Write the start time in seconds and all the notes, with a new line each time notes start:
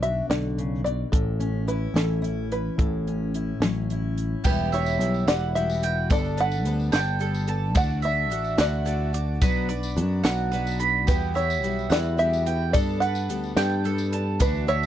Already playing: B1 B2 D3 D4
0.03 F#4 E5, closed hi-hat
0.30 B1 D3 D5, snare, closed hi-hat
0.58 C#3, closed hi-hat
0.84 B2 D5, closed hi-hat
1.12 A1 A2 A4, kick, closed hi-hat
1.40 C#4, closed hi-hat
1.67 E4 B4, closed hi-hat
1.94 A1 E3 C#4 A4, snare, closed hi-hat
2.22 E4, closed hi-hat
2.52 B4, closed hi-hat
2.78 A1 A2 A4, kick, closed hi-hat
3.07 C#4, closed hi-hat
3.34 E4, closed hi-hat
3.60 A1 F#3 C#4, snare, closed hi-hat
3.90 E4, closed hi-hat
4.18 closed hi-hat
4.44 E1 E3 G3 B3 E4 F#4 G4 B4, kick, crash, tambourine
4.59 tambourine
4.72 B3 E4 F#4 C#5 E5, closed hi-hat, tambourine
4.86 tambourine
4.99 B1 G3 B3 E4 F#4, closed hi-hat, tambourine
5.14 tambourine
5.27 E1 E3 G3 B3 E4 F#4 D5 F#5, snare, closed hi-hat, tambourine
5.55 G3 B3 E4 F#4 G4 E5, closed hi-hat
5.70 tambourine
5.82 B3 E4 F#4 G5, closed hi-hat
6.10 G1 G3 B3 D4 A4 D5, kick, closed hi-hat, tambourine
6.25 tambourine
6.37 B3 D4 A4 B4 F#5, closed hi-hat, tambourine
6.52 tambourine
6.65 D2 G3 B3 D4 A4, closed hi-hat, tambourine
6.80 tambourine
6.92 G1 G3 B3 D4 A4 G5, snare, closed hi-hat, tambourine
7.19 G3 B3 D4 A4, closed hi-hat
7.35 tambourine
7.47 B3 D4 A4 A5, closed hi-hat
7.75 D2 D3 E3 A3 D4 F#4 D5 F#5, kick, closed hi-hat, tambourine
7.90 tambourine
8.02 A3 D4 F#4 E5, closed hi-hat, tambourine
8.30 A1 E3 A3 D4 F#4, closed hi-hat
8.44 tambourine
8.58 D2 D3 E3 A3 D4 F#4 D5 F#5, snare, closed hi-hat, tambourine
8.85 E3 A3 D4 F#4 D5, closed hi-hat
9.13 A3 D4 F#4 D6, closed hi-hat
9.41 B1 B2 F#3 B3 D4 F#4 B4, kick, closed hi-hat, tambourine
9.56 tambourine
9.69 B3 D4 F#4 D5, closed hi-hat
9.83 tambourine
9.96 F#2 F#3 B3 D4 F#4, closed hi-hat
10.24 B1 B2 F#3 B3 D4 F#4 F#5, snare, closed hi-hat, tambourine
10.52 F#3 B3 D4 F#4 B4, closed hi-hat, tambourine
10.67 tambourine
10.80 B3 D4 F#4 B5, closed hi-hat
11.07 E2 E3 G3 B3 E4 F#4 G4 B4, kick, closed hi-hat, tambourine
11.22 tambourine
11.34 B3 E4 F#4 C#5 E5, closed hi-hat, tambourine
11.50 tambourine
11.63 B1 G3 B3 E4 F#4, closed hi-hat, tambourine
11.79 tambourine
11.90 E2 E3 G3 B3 E4 F#4 D5 F#5, snare, closed hi-hat, tambourine
12.17 G3 B3 E4 F#4 G4 E5, closed hi-hat
12.33 tambourine
12.46 B3 E4 F#4 G5, closed hi-hat
12.73 G2 G3 B3 D4 A4 D5, kick, closed hi-hat, tambourine
12.89 tambourine
13.00 B3 D4 A4 B4 F#5, closed hi-hat, tambourine
13.15 tambourine
13.29 D2 G3 B3 D4 A4, closed hi-hat, tambourine
13.44 tambourine
13.56 G2 G3 B3 D4 A4 G5, snare, closed hi-hat, tambourine
13.84 G3 B3 D4 A4, closed hi-hat
13.98 tambourine
14.12 B3 D4 A4 A5, closed hi-hat
14.39 D2 D3 E3 A3 D4 F#4 B4, kick, closed hi-hat, tambourine
14.55 tambourine
14.67 A3 D4 F#4 C#5 E5, closed hi-hat, tambourine